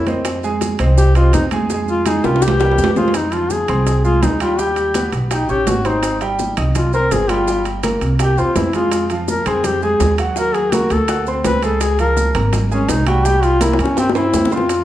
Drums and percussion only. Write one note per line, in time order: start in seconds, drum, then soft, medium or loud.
0.07 high bongo soft
0.07 high conga medium
0.07 high timbale medium
0.07 maracas soft
0.25 high bongo medium
0.25 high conga soft
0.25 high timbale medium
0.25 maracas medium
0.43 high bongo soft
0.43 high conga soft
0.43 maracas soft
0.61 high bongo medium
0.61 high conga medium
0.61 high timbale medium
0.61 maracas medium
0.79 high bongo soft
0.79 high conga soft
0.79 high timbale medium
0.79 maracas soft
0.98 high bongo medium
0.98 high conga soft
0.98 maracas medium
1.15 high conga soft
1.15 high timbale medium
1.15 maracas soft
1.33 high bongo medium
1.33 low bongo medium
1.33 high conga medium
1.33 high timbale medium
1.33 low timbale medium
1.33 maracas medium
1.51 high bongo soft
1.51 high conga medium
1.51 high timbale medium
1.51 maracas soft
1.70 high bongo medium
1.70 high conga soft
1.70 maracas medium
1.88 high bongo soft
1.88 high conga soft
1.88 maracas soft
2.06 high bongo medium
2.06 high conga medium
2.06 high timbale medium
2.06 maracas medium
2.24 high bongo medium
2.24 high timbale medium
2.24 maracas soft
2.36 high timbale medium
2.42 high bongo medium
2.42 maracas medium
2.48 low timbale loud
2.60 high bongo loud
2.60 low timbale loud
2.60 maracas soft
2.72 low timbale medium
2.78 low bongo medium
2.78 high conga soft
2.78 maracas medium
2.84 low timbale loud
2.96 low bongo loud
2.96 high conga medium
2.96 maracas soft
3.08 low timbale medium
3.14 high bongo medium
3.14 high conga soft
3.14 high timbale medium
3.14 maracas medium
3.32 high conga soft
3.32 high timbale medium
3.32 maracas soft
3.50 high bongo medium
3.50 high conga medium
3.50 low timbale medium
3.50 maracas medium
3.68 high conga soft
3.68 low conga medium
3.68 high timbale loud
3.68 maracas soft
3.87 high bongo medium
3.87 high conga soft
3.87 high timbale medium
3.87 maracas medium
4.05 high conga soft
4.05 maracas soft
4.23 high bongo medium
4.23 low bongo medium
4.23 high conga soft
4.23 high timbale medium
4.23 low timbale medium
4.23 maracas medium
4.40 high timbale medium
4.40 maracas soft
4.59 high bongo medium
4.59 high conga soft
4.59 maracas medium
4.76 high bongo soft
4.76 high conga soft
4.76 high timbale medium
4.76 maracas soft
4.94 high bongo medium
4.94 high conga medium
4.94 high timbale medium
4.94 low timbale medium
4.94 maracas medium
5.13 high bongo soft
5.13 high conga soft
5.13 high timbale medium
5.13 maracas soft
5.31 high bongo medium
5.31 high conga soft
5.31 high timbale medium
5.31 maracas medium
5.49 high bongo soft
5.49 high conga soft
5.49 maracas soft
5.67 high bongo medium
5.67 low bongo medium
5.67 high conga medium
5.67 high timbale medium
5.67 low timbale medium
5.67 maracas medium
5.85 high conga soft
5.85 high timbale medium
5.85 maracas soft
6.03 high bongo medium
6.03 high conga soft
6.03 high timbale medium
6.03 maracas medium
6.21 high conga soft
6.21 high timbale medium
6.21 maracas soft
6.39 high bongo medium
6.39 high conga medium
6.39 low timbale medium
6.39 maracas medium
6.57 high conga soft
6.57 low conga medium
6.57 high timbale loud
6.57 maracas soft
6.75 high bongo medium
6.75 high conga soft
6.75 low conga medium
6.75 high timbale medium
6.75 maracas medium
6.93 high conga soft
6.93 maracas soft
7.11 high bongo medium
7.11 low bongo medium
7.11 high conga soft
7.11 high timbale medium
7.11 low timbale medium
7.11 maracas medium
7.29 high conga medium
7.29 high timbale medium
7.29 maracas soft
7.48 high bongo medium
7.48 high conga soft
7.48 maracas medium
7.65 high bongo soft
7.65 high conga soft
7.65 high timbale medium
7.65 maracas soft
7.83 high bongo medium
7.83 high conga medium
7.83 high timbale medium
7.83 low timbale medium
7.83 maracas medium
8.01 high bongo soft
8.01 high timbale medium
8.01 maracas soft
8.19 high bongo medium
8.19 high conga soft
8.19 high timbale medium
8.19 maracas medium
8.38 high bongo soft
8.38 high conga soft
8.38 maracas soft
8.56 high bongo medium
8.56 low bongo medium
8.56 high conga medium
8.56 high timbale medium
8.56 low timbale medium
8.56 maracas medium
8.73 high conga soft
8.73 high timbale medium
8.73 maracas soft
8.92 high bongo medium
8.92 high conga soft
8.92 high timbale medium
8.92 maracas medium
9.10 high conga soft
9.10 high timbale medium
9.10 maracas soft
9.28 high bongo medium
9.28 high conga medium
9.28 low timbale medium
9.28 maracas medium
9.46 high conga soft
9.46 low conga medium
9.46 high timbale loud
9.46 maracas soft
9.64 high bongo medium
9.64 high conga soft
9.64 low conga medium
9.64 high timbale medium
9.64 maracas medium
9.82 high conga soft
9.82 maracas soft
10.00 high bongo medium
10.00 low bongo medium
10.00 high conga soft
10.00 high timbale medium
10.00 low timbale medium
10.00 maracas medium
10.18 high timbale medium
10.18 maracas soft
10.36 high bongo medium
10.36 high conga soft
10.36 maracas medium
10.54 high bongo soft
10.54 high conga soft
10.54 high timbale medium
10.54 maracas soft
10.72 high bongo medium
10.72 high conga loud
10.72 high timbale medium
10.72 low timbale medium
10.72 maracas medium
10.90 high bongo soft
10.90 high conga soft
10.90 high timbale medium
10.90 maracas soft
11.08 high bongo medium
11.08 high conga soft
11.08 high timbale loud
11.08 maracas medium
11.27 high bongo soft
11.27 high conga soft
11.27 maracas soft
11.45 high bongo medium
11.45 low bongo medium
11.45 high conga medium
11.45 high timbale medium
11.45 low timbale medium
11.45 maracas medium
11.63 high conga soft
11.63 high timbale medium
11.63 maracas soft
11.81 high bongo medium
11.81 high conga soft
11.81 high timbale medium
11.81 maracas medium
11.99 high conga soft
11.99 high timbale medium
11.99 maracas soft
12.17 high bongo medium
12.17 high conga medium
12.17 low timbale medium
12.17 maracas medium
12.35 high conga soft
12.35 low conga medium
12.35 high timbale loud
12.35 maracas soft
12.53 high bongo medium
12.53 high conga soft
12.53 low conga medium
12.53 high timbale medium
12.53 maracas medium
12.71 high conga soft
12.71 maracas soft
12.89 high bongo medium
12.89 low bongo medium
12.89 high conga soft
12.89 high timbale medium
12.89 low timbale medium
12.89 maracas medium
13.07 high conga medium
13.07 high timbale medium
13.07 maracas soft
13.25 high bongo medium
13.25 high conga soft
13.25 maracas medium
13.43 high bongo soft
13.43 high conga soft
13.43 high timbale medium
13.43 maracas soft
13.61 high bongo medium
13.61 high conga loud
13.61 high timbale medium
13.61 low timbale medium
13.61 maracas medium
13.73 high bongo loud
13.79 high conga soft
13.79 high timbale medium
13.79 maracas soft
13.85 high bongo medium
13.97 high bongo medium
13.97 high conga soft
13.97 high timbale medium
13.97 maracas medium
14.10 high bongo loud
14.15 high conga soft
14.15 high timbale medium
14.15 maracas soft
14.34 low bongo loud
14.34 high conga medium
14.34 low timbale medium
14.34 maracas medium
14.45 low bongo loud
14.51 high conga soft
14.51 low timbale medium
14.51 maracas soft
14.57 low bongo medium
14.69 high bongo medium
14.69 high conga soft
14.69 high timbale medium
14.69 maracas medium